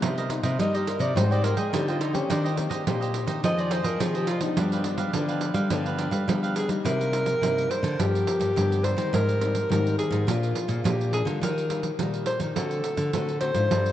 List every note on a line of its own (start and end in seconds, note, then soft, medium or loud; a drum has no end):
0.00 0.57 C3 medium
0.00 0.39 C3 loud
0.00 0.26 G3 medium
0.00 0.26 A#3 medium
0.00 0.26 D#4 medium
0.00 0.16 D#4 medium
0.00 0.16 A#4 medium
0.00 pandeiro medium
0.04 0.17 C5 medium
0.04 0.17 D#5 medium
0.18 0.30 A#4 medium
0.18 0.30 C5 medium
0.18 0.30 D#5 medium
0.18 pandeiro soft
0.29 0.54 G3 medium
0.29 0.54 A#3 medium
0.29 0.54 D#4 medium
0.29 muted cavaquinho stroke soft
0.29 pandeiro medium
0.43 0.56 C3 medium
0.43 0.58 A#4 medium
0.43 0.58 C5 medium
0.43 0.57 D#5 medium
0.43 pandeiro medium
0.59 1.13 G2 medium
0.59 0.96 G3 medium
0.59 1.12 G3 medium
0.59 1.12 A#3 medium
0.59 1.12 D#4 medium
0.59 0.73 D#4 medium
0.59 0.73 A#4 medium
0.59 0.73 C5 medium
0.59 0.77 D#5 medium
0.59 0.73 D#5 medium
0.59 pandeiro medium
0.74 0.89 G4 medium
0.74 1.00 A#4 medium
0.74 0.99 C5 medium
0.74 0.98 D#5 medium
0.74 pandeiro soft
0.87 1.03 A#4 medium
0.87 pandeiro medium
0.99 1.13 C3 medium
0.99 1.15 A#4 medium
0.99 1.14 C5 medium
0.99 1.18 D5 medium
0.99 1.14 D#5 medium
0.99 pandeiro medium
1.15 1.70 G#2 medium
1.15 1.52 G#2 medium
1.15 1.52 G3 medium
1.15 1.53 C4 medium
1.15 1.53 D#4 medium
1.15 1.29 G#4 medium
1.15 1.29 C5 medium
1.15 1.33 C5 medium
1.15 1.30 D#5 medium
1.15 1.30 G5 medium
1.15 pandeiro loud
1.31 1.43 C5 medium
1.31 1.45 D5 loud
1.31 1.44 D#5 medium
1.31 1.44 G5 medium
1.31 pandeiro soft
1.44 1.57 G#4 medium
1.44 1.59 A#4 medium
1.44 1.57 C5 medium
1.44 1.57 D#5 medium
1.44 1.56 G5 medium
1.44 pandeiro medium
1.57 1.70 G#3 medium
1.57 1.75 G#4 medium
1.57 1.86 C5 medium
1.57 1.86 D#5 medium
1.57 1.85 G5 medium
1.57 pandeiro medium
1.73 2.21 D3 medium
1.73 2.00 G3 medium
1.73 2.00 C4 medium
1.73 2.00 D#4 medium
1.73 1.90 G4 medium
1.73 pandeiro medium
1.88 2.02 F4 medium
1.88 2.00 C5 medium
1.88 2.01 D#5 medium
1.88 2.01 G5 medium
1.88 pandeiro soft
2.00 2.16 D#4 medium
2.00 2.13 G#4 soft
2.00 2.13 C5 medium
2.00 2.14 D#5 medium
2.00 2.13 G5 medium
2.00 pandeiro medium
2.13 2.53 A#3 medium
2.13 2.53 C4 medium
2.13 2.30 C#4 medium
2.13 2.53 G4 medium
2.13 muted cavaquinho stroke soft
2.13 pandeiro medium
2.30 2.66 D#3 loud
2.30 2.84 D#3 medium
2.30 2.48 D4 medium
2.30 2.43 D#4 medium
2.30 2.43 G4 soft
2.30 2.43 C5 medium
2.30 2.43 D#5 medium
2.30 pandeiro medium
2.44 2.56 G4 medium
2.44 2.56 C5 medium
2.44 2.57 D#5 medium
2.44 pandeiro soft
2.57 2.82 A#3 medium
2.57 2.82 C4 medium
2.57 2.82 G4 medium
2.57 muted cavaquinho stroke soft
2.57 pandeiro medium
2.70 2.84 D#3 medium
2.70 2.85 G4 medium
2.70 2.85 C5 medium
2.70 2.84 D#5 medium
2.70 pandeiro medium
2.87 3.23 A#2 medium
2.87 3.41 A#2 medium
2.87 3.39 A#3 medium
2.87 3.39 C4 medium
2.87 3.00 D#4 medium
2.87 3.00 G4 medium
2.87 3.40 G4 medium
2.87 3.00 C5 medium
2.87 3.00 D#5 medium
2.87 pandeiro medium
3.01 3.27 G4 medium
3.01 3.26 C5 medium
3.01 3.25 D#5 medium
3.01 pandeiro soft
3.14 pandeiro medium
3.27 3.40 D#3 medium
3.27 3.42 G4 medium
3.27 3.42 C5 medium
3.27 3.41 D#5 medium
3.27 pandeiro medium
3.43 3.98 F2 medium
3.43 3.80 D#3 medium
3.43 3.80 F3 medium
3.43 3.80 G#3 medium
3.43 3.81 C4 medium
3.43 3.56 F4 soft
3.43 3.57 G#4 medium
3.43 3.57 C5 medium
3.43 3.61 D#5 medium
3.43 3.56 D#5 medium
3.43 pandeiro medium
3.57 3.70 G#4 medium
3.57 3.70 C5 medium
3.57 3.74 D5 medium
3.57 3.71 D#5 medium
3.57 pandeiro soft
3.70 3.84 F4 medium
3.70 3.84 G#4 medium
3.70 3.83 C5 medium
3.70 3.87 C5 medium
3.70 3.82 D#5 medium
3.70 pandeiro medium
3.83 3.97 F3 medium
3.83 4.13 G#4 medium
3.83 4.03 A#4 medium
3.83 4.13 C5 medium
3.83 4.12 D#5 medium
3.83 pandeiro medium
4.00 4.55 C3 medium
4.00 4.27 D#3 medium
4.00 4.49 F3 loud
4.00 4.28 G#3 medium
4.00 4.28 C4 medium
4.00 4.17 G#4 medium
4.00 pandeiro medium
4.15 4.30 G4 medium
4.15 4.27 G#4 medium
4.15 4.27 C5 medium
4.15 4.28 D#5 medium
4.15 pandeiro soft
4.27 4.40 F4 soft
4.27 4.43 F4 medium
4.27 4.40 G#4 medium
4.27 4.41 C5 medium
4.27 4.41 D#5 medium
4.27 pandeiro medium
4.41 4.80 F3 medium
4.41 4.81 B3 medium
4.41 4.81 D4 medium
4.41 4.59 D#4 medium
4.41 muted cavaquinho stroke soft
4.41 pandeiro medium
4.57 5.12 G2 medium
4.57 4.94 G3 loud
4.57 4.70 D4 soft
4.57 6.28 D4 medium
4.57 4.71 G4 medium
4.57 4.71 B4 medium
4.57 4.71 F5 medium
4.57 pandeiro medium
4.72 4.85 G4 medium
4.72 4.85 B4 medium
4.72 4.85 F5 medium
4.72 pandeiro soft
4.84 5.09 F3 medium
4.84 5.10 B3 medium
4.84 5.10 D4 medium
4.84 muted cavaquinho stroke soft
4.84 pandeiro medium
4.97 5.11 G3 medium
4.97 5.13 G4 medium
4.97 5.12 B4 medium
4.97 5.12 F5 medium
4.97 pandeiro medium
5.13 5.50 D3 medium
5.13 5.69 D3 medium
5.13 5.51 F3 medium
5.13 5.52 B3 medium
5.13 5.27 D4 soft
5.13 5.52 D4 medium
5.13 5.28 G4 medium
5.13 5.28 B4 medium
5.13 5.27 F5 medium
5.13 pandeiro medium
5.29 5.54 G4 medium
5.29 5.54 B4 medium
5.29 5.53 F5 medium
5.29 pandeiro soft
5.41 pandeiro medium
5.54 5.68 G3 medium
5.54 5.69 G4 medium
5.54 5.69 B4 medium
5.54 5.69 F5 medium
5.54 pandeiro medium
5.70 6.25 G2 medium
5.70 6.07 D3 medium
5.70 6.08 F3 medium
5.70 6.08 B3 medium
5.70 5.84 D4 medium
5.70 6.08 D4 medium
5.70 5.84 G4 medium
5.70 5.85 B4 medium
5.70 5.84 F5 medium
5.70 pandeiro medium
5.86 5.98 G4 medium
5.86 5.98 B4 medium
5.86 5.99 F5 medium
5.86 pandeiro soft
5.98 6.12 D4 medium
5.98 6.12 G4 medium
5.98 6.11 B4 medium
5.98 6.10 F5 medium
5.98 pandeiro medium
6.11 6.24 G3 medium
6.11 6.41 G4 medium
6.11 6.40 B4 medium
6.11 6.40 F5 medium
6.11 pandeiro medium
6.28 6.83 D3 medium
6.28 6.67 F3 medium
6.28 6.76 G3 loud
6.28 6.67 B3 medium
6.28 6.67 D4 medium
6.28 pandeiro medium
6.43 6.55 G4 medium
6.43 6.55 B4 medium
6.43 6.55 F5 medium
6.43 pandeiro soft
6.55 6.67 D4 medium
6.55 6.67 G4 medium
6.55 6.69 G#4 medium
6.55 6.68 B4 medium
6.55 6.68 F5 medium
6.55 pandeiro medium
6.68 7.08 G3 medium
6.68 7.09 A#3 medium
6.68 7.09 D#4 medium
6.68 muted cavaquinho stroke soft
6.68 pandeiro medium
6.85 7.33 C3 loud
6.85 7.40 C3 medium
6.85 7.72 A#4 loud
6.85 pandeiro medium
7.01 pandeiro soft
7.12 7.30 G3 medium
7.12 7.30 A#3 medium
7.12 7.30 D#4 medium
7.12 pandeiro medium
7.26 pandeiro medium
7.41 7.97 G2 medium
7.41 7.66 C3 medium
7.41 7.79 G3 medium
7.41 7.79 A#3 medium
7.41 7.80 D#4 medium
7.41 pandeiro medium
7.58 pandeiro soft
7.70 8.01 C5 medium
7.70 pandeiro medium
7.83 7.96 D3 medium
7.83 pandeiro medium
7.99 8.53 G2 medium
7.99 8.23 G2 medium
7.99 8.52 F3 medium
7.99 8.52 B3 medium
7.99 8.52 D4 medium
7.99 8.86 G4 loud
7.99 pandeiro medium
8.15 pandeiro soft
8.27 pandeiro medium
8.40 8.53 G2 medium
8.40 pandeiro medium
8.56 8.93 G2 loud
8.56 9.11 D3 medium
8.56 8.81 F3 medium
8.56 8.81 B3 medium
8.56 8.81 D4 medium
8.56 pandeiro medium
8.72 pandeiro soft
8.84 8.94 F3 medium
8.84 8.95 B3 medium
8.84 8.95 D4 medium
8.84 9.13 C5 loud
8.84 pandeiro medium
8.97 9.10 D#3 medium
8.97 9.37 G3 medium
8.97 9.37 C4 medium
8.97 9.37 D#4 medium
8.97 pandeiro medium
9.13 9.62 G#2 loud
9.13 9.68 G#2 medium
9.13 9.67 A#4 loud
9.13 pandeiro medium
9.29 pandeiro soft
9.41 9.58 G3 medium
9.41 9.58 C4 medium
9.41 9.58 D#4 medium
9.41 pandeiro medium
9.55 pandeiro medium
9.70 9.94 G#2 medium
9.70 10.25 D#3 medium
9.70 10.07 G3 soft
9.70 10.07 C4 medium
9.70 10.07 D#4 medium
9.70 9.97 A#4 loud
9.70 pandeiro medium
9.87 pandeiro soft
9.98 10.30 G#4 medium
9.98 pandeiro medium
10.11 10.24 G#2 loud
10.11 pandeiro medium
10.27 10.52 A#2 medium
10.27 10.82 A#2 medium
10.27 10.65 F3 medium
10.27 10.65 A#3 medium
10.27 10.65 D4 medium
10.27 10.85 F4 medium
10.27 pandeiro medium
10.43 pandeiro soft
10.55 pandeiro medium
10.68 10.81 A#2 medium
10.68 pandeiro medium
10.84 11.21 A#2 loud
10.84 11.11 F3 medium
10.84 11.09 A#3 soft
10.84 11.09 D4 medium
10.84 11.12 G4 medium
10.84 pandeiro medium
11.01 pandeiro soft
11.12 11.21 F3 medium
11.12 11.22 A#3 medium
11.12 11.22 D4 medium
11.12 11.26 G#4 medium
11.12 pandeiro medium
11.25 11.38 D3 medium
11.25 11.65 G3 medium
11.25 11.65 A#3 medium
11.25 11.65 F4 medium
11.25 pandeiro medium
11.41 11.90 D#3 loud
11.41 11.96 D#3 medium
11.41 11.97 A#4 medium
11.41 pandeiro medium
11.58 pandeiro soft
11.69 11.87 G3 medium
11.69 11.87 A#3 medium
11.69 11.87 F4 medium
11.69 pandeiro medium
11.83 pandeiro medium
11.99 12.54 A#2 medium
11.99 12.23 D#3 medium
11.99 12.36 G3 medium
11.99 12.36 A#3 medium
11.99 12.37 F4 medium
11.99 pandeiro medium
12.14 pandeiro soft
12.26 12.40 C5 medium
12.26 pandeiro medium
12.40 12.53 D#3 medium
12.40 pandeiro medium
12.55 13.11 D3 medium
12.55 12.81 D3 medium
12.55 12.93 A3 medium
12.55 12.93 C4 medium
12.55 12.93 F#4 medium
12.55 13.38 A4 medium
12.55 pandeiro medium
12.71 pandeiro soft
12.84 pandeiro medium
12.97 13.10 D3 medium
12.97 pandeiro medium
13.13 13.68 A2 medium
13.13 13.50 D3 medium
13.13 13.31 A3 medium
13.13 13.31 C4 medium
13.13 13.31 F#4 medium
13.13 pandeiro medium
13.29 pandeiro soft
13.40 13.50 A3 medium
13.40 13.50 C4 medium
13.40 13.50 F#4 medium
13.40 13.92 C5 loud
13.40 pandeiro medium
13.54 13.67 G#2 medium
13.54 13.92 D4 medium
13.54 13.92 F4 medium
13.54 pandeiro medium
13.71 13.92 G2 loud
13.71 13.92 G3 medium
13.71 pandeiro medium
13.86 pandeiro soft